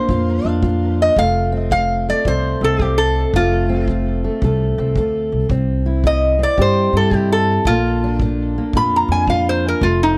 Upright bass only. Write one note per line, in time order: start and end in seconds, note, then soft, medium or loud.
0.09 0.40 F2 medium
0.44 1.07 F2 medium
1.17 2.10 F1 medium
2.25 2.56 C2 medium
2.61 3.24 C2 medium
3.34 4.27 F1 loud
4.42 4.72 C2 medium
4.78 4.94 C2 medium
4.96 5.28 D2 medium
5.32 5.48 C2 medium
5.49 6.42 C2 medium
6.58 6.88 G2 medium
6.93 7.56 G2 medium
7.65 8.59 A#1 medium
8.73 9.04 F2 medium
9.08 9.72 F2 loud
9.81 10.18 F1 loud